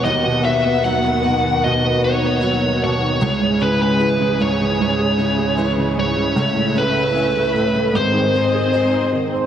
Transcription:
<<
  \new Staff \with { instrumentName = "Lead electric guitar" } { \time 4/4 \key cis \minor \tempo 4 = 76 dis''8 e''8 fis''4 dis''8 cis''4 cis''8~ | cis''8 b'16 b'8. cis''2 cis''8~ | cis''8 b'4. bis'4. r8 | }
  \new Staff \with { instrumentName = "Steel-string acoustic guitar" } { \time 4/4 \key cis \minor <dis fis b dis' b'>8 <b b'>8 <fis b dis' b'>8 <b dis' b'>4 <b dis' b'>8 <fis b dis' b'>4 | <cis gis cis' e' gis'>8 <cis' e' gis'>8 <gis cis' e' gis'>8 <cis' e' gis'>4 <cis' e' gis'>8 <gis cis' e' gis'>4 | <cis a cis' e' a'>8 <cis' e' a'>8 <a cis' e' a'>8 <cis' e' a'>8 <gis, dis gis bis dis' gis'>8 <gis bis dis' gis'>8 <gis bis dis' gis'>4 | }
  \new Staff \with { instrumentName = "String section" } { \time 4/4 \key cis \minor << { <dis, b fis''>1 | <cis, gis gis'>1 | <cis, a e''>2 <gis, bis dis''>2 | } \\ { <dis fis'>1 | <cis e'>1~ | <cis e'>2 <dis gis'>2 | } >> }
  \new Staff \with { instrumentName = "Grand piano" } { \clef bass \time 4/4 \key cis \minor dis,16 b,16 dis16 b16 fis16 dis16 b,16 dis16 b,16 b'16 dis16 b16 fis16 dis16 b,16 dis16 | cis,16 gis,16 cis16 gis16 e16 cis16 gis,16 cis16 gis,16 gis'16 cis16 gis16 e16 cis16 gis,16 cis16 | cis,16 a,16 cis16 e'16 cis'16 cis16 a,16 cis16 gis,16 dis16 bis16 gis'16 dis'16 bis16 dis16 bis16 | }
>>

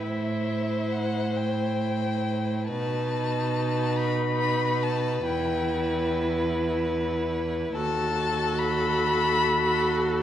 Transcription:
<<
  \new Staff \with { instrumentName = "Violin" } { \time 6/8 \key b \phrygian \tempo 4. = 47 e''4 fis''8 g''4. | a''4. b''4 a''8 | g''4 r2 | a''4 b''2 | }
  \new Staff \with { instrumentName = "Violin" } { \time 6/8 \key b \phrygian c''2. | b'2.~ | b'2. | a'2. | }
  \new Staff \with { instrumentName = "Viola" } { \time 6/8 \key b \phrygian e'2. | dis'2. | e'2. | fis'2. | }
  \new Staff \with { instrumentName = "Cello" } { \clef bass \time 6/8 \key b \phrygian a,2. | b,2. | e,2. | dis,2. | }
>>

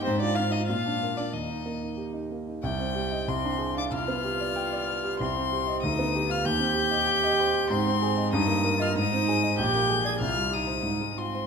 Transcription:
<<
  \new Staff \with { instrumentName = "Violin" } { \time 2/4 \key ees \major \tempo 4 = 94 c''16 d''16 f''16 ees''16 f''8. d''16 | ees''4 r4 | \key c \minor g''4 c'''8. d'''16 | f'''2 |
c'''4 ees'''8. f'''16 | g'''2 | \key aes \lydian c'''4 ees'''8. f'''16 | ees'''4 g'''8. aes'''16 |
f'''8 ees'''4 c'''8 | }
  \new Staff \with { instrumentName = "Cello" } { \time 2/4 \key ees \major c'16 d'16 f'16 ees'16 f'8. d'16 | ees'4 r4 | \key c \minor g4 c'8. d'16 | f'2 |
c'4 ees'8. f'16 | g'2 | \key aes \lydian c'4 ees'8. f'16 | ees'4 g'8. aes'16 |
f'8 ees'4 c'8 | }
  \new Staff \with { instrumentName = "Grand piano" } { \time 2/4 \key ees \major aes,16 f'16 c'16 f'16 bes,16 d'16 bes16 d'16 | ees,16 ees'16 bes16 ees'16 g'16 ees'16 bes16 ees'16 | \key c \minor c,16 c'16 g'16 ees''16 c,16 d'16 aes'16 f''16 | c,16 b16 g'16 d''16 g''16 d''16 b'16 g'16 |
c,16 c'16 g'16 ees''16 d,16 b16 g'16 f''16 | ees,16 c'16 g'16 ees''16 g''16 ees''16 c''16 g'16 | \key aes \lydian aes,16 c'16 aes'16 ees''16 g,16 bes16 bes'16 ees''16 | aes,16 c'16 aes'16 ees''16 bes,,16 bes16 aes'16 d''16 |
c,16 g16 g'16 c''16 aes,16 aes16 f'16 c''16 | }
>>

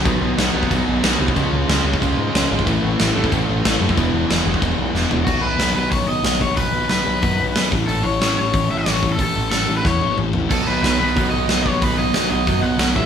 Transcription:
<<
  \new Staff \with { instrumentName = "Overdriven electric guitar" } { \time 4/4 \key b \mixolydian \tempo 4 = 184 r1 | r1 | r1 | r1 |
fis'8 b'4 b'8 cis''8 dis''4 cis''8 | b'4 b'2~ b'8 r8 | a'8 cis''8 cis''8 cis''4 e''16 cis''4 a'16 | a'4 a'8. b'16 cis''4 r4 |
a'8 b'8 b'8 b'4 dis''4 cis''8 | b'8 dis''4 dis''4 fis''4 e''8 | }
  \new Staff \with { instrumentName = "Distorted electric guitar" } { \clef bass \time 4/4 \key b \mixolydian <b, dis fis b dis'>4 <b, dis fis b dis'>8 <b, dis fis b dis'>8 <b, dis fis b dis'>4 <b, dis fis b dis'>8 <b, dis fis b dis'>8 | <cis gis cis' eis'>4 <cis gis cis' eis'>8 <cis gis cis' eis'>8 <cis gis cis' eis'>4 <cis gis cis' eis'>8 <cis gis cis' eis'>8 | <a, e a cis' e'>4 <a, e a cis' e'>8 <a, e a cis' e'>8 <a, e a cis' e'>4 <a, e a cis' e'>8 <a, e a cis' e'>8 | <e gis b e'>4 <e gis b e'>8 <e gis b e'>8 <e gis b e'>4 <e gis b e'>8 <e gis b e'>8 |
<b, dis fis b dis'>8 <b, dis fis b dis'>8 <b, dis fis b dis'>8 <b, dis fis b dis'>8 <b, dis fis b dis'>8 <b, dis fis b dis'>8 <b, dis fis b dis'>8 <b, dis fis b dis'>8 | <b, dis fis b dis'>8 <b, dis fis b dis'>8 <b, dis fis b dis'>8 <b, dis fis b dis'>8 <b, dis fis b dis'>8 <b, dis fis b dis'>8 <b, dis fis b dis'>8 <a, e a cis' e'>8 | <a, e a cis' e'>8 <a, e a cis' e'>8 <a, e a cis' e'>8 <a, e a cis' e'>8 <a, e a cis' e'>8 <a, e a cis' e'>8 <a, e a cis' e'>8 <a, e a cis' e'>8 | <a, e a cis' e'>8 <a, e a cis' e'>8 <a, e a cis' e'>8 <a, e a cis' e'>8 <a, e a cis' e'>8 <a, e a cis' e'>8 <a, e a cis' e'>8 <a, e a cis' e'>8 |
<b, dis fis b dis'>8 <b, dis fis b dis'>8 <b, dis fis b dis'>8 <b, dis fis b dis'>8 <b, dis fis b dis'>8 <b, dis fis b dis'>8 <b, dis fis b dis'>8 <b, dis fis b dis'>8 | <b, dis fis b dis'>8 <b, dis fis b dis'>8 <b, dis fis b dis'>8 <b, dis fis b dis'>8 <b, dis fis b dis'>8 <b, dis fis b dis'>8 <b, dis fis b dis'>8 <a, e a cis' e'>8 | }
  \new Staff \with { instrumentName = "Overdriven electric guitar" } { \clef bass \time 4/4 \key b \mixolydian <b, fis b>4 <b, fis b>8 <b, fis b>8 <b, fis b>4 <b, fis b>8 <b, fis b>8 | <cis gis cis'>4 <cis gis cis'>8 <cis gis cis'>8 <cis gis cis'>4 <cis gis cis'>8 <cis gis cis'>8 | <a, e a>4 <a, e a>8 <a, e a>8 <a, e a>4 <a, e a>8 <a, e a>8 | <e, b, e>4 <e, b, e>8 <e, b, e>8 <e, b, e>4 <e, b, e>8 <e, b, e>8 |
r1 | r1 | r1 | r1 |
<b, fis b>8 <b, fis b>8 <b, fis b>8 <b, fis b>8 <b, fis b>8 <b, fis b>8 <b, fis b>8 <b, fis b>8 | <b, fis b>8 <b, fis b>8 <b, fis b>8 <b, fis b>8 <b, fis b>8 <b, fis b>8 <b, fis b>8 <a, e a>8 | }
  \new Staff \with { instrumentName = "Distorted electric guitar" } { \clef bass \time 4/4 \key b \mixolydian <b, fis b>4. <b, fis b>2~ <b, fis b>8 | <cis gis cis'>4. <cis gis cis'>2~ <cis gis cis'>8 | <a, e a>4. <a, e a>2~ <a, e a>8 | <e, b, e>4. <e, b, e>2~ <e, b, e>8 |
r1 | r1 | r1 | r1 |
r1 | r1 | }
  \new Staff \with { instrumentName = "Picked electric bass" } { \clef bass \time 4/4 \key b \mixolydian b,,8 b,,8 b,,8 b,,8 b,,8 b,,8 b,,8 c,8 | cis,8 cis,8 cis,8 cis,8 cis,8 gis,8 cis,8 gis,,8 | a,,8 a,,8 a,,8 a,,8 a,,8 a,,8 a,,8 fis,8 | e,,8 e,,8 e,,8 e,,8 e,,8 b,,8 e,,8 e,,8 |
b,,8 b,,8 b,,8 b,,8 b,,8 b,,8 b,,8 b,,8 | b,,8 b,,8 b,,8 b,,8 fis,8 b,,8 b,,8 a,,8 | a,,8 a,,8 a,,8 a,,8 a,,8 a,,8 a,,8 a,,8 | a,,8 a,,8 a,,8 a,,8 e,8 a,,8 a,,8 a,,8 |
b,,8 b,,8 b,,8 b,,8 b,,8 b,,8 b,,8 b,,8 | b,,8 b,,8 b,,8 b,,8 fis,8 b,,8 b,,8 a,,8 | }
  \new DrumStaff \with { instrumentName = "Drums" } \drummode { \time 4/4 <cymc bd>4 <cymc sn>8. bd16 <cymc bd>4 <cymc sn>8. bd16 | <cymc bd>4 <cymc sn>8. bd16 <cymc bd>4 <cymc sn>8. bd16 | <cymc bd>4 <cymc sn>8. bd16 <cymc bd>4 <cymc sn>8. bd16 | <cymc bd>4 <cymc sn>8. bd16 <cymc bd>4 sn8 tomfh8 |
<cymc bd>4 <hho sn>4 <hho bd>4 <hho sn>8 bd8 | <hho bd>4 <hho sn>4 <hho bd>4 <hho sn>8 bd8 | hho4 <hho sn>4 <hho bd>4 <hho sn>8 bd8 | <hho bd>4 <hho sn>4 <bd sn>8 tommh8 toml8 tomfh8 |
<cymc hho bd>4 <hho sn>4 <hho bd>4 <hho sn>8 bd8 | <hho bd>4 <hho sn>4 <hho bd>4 <hho sn>8 bd8 | }
>>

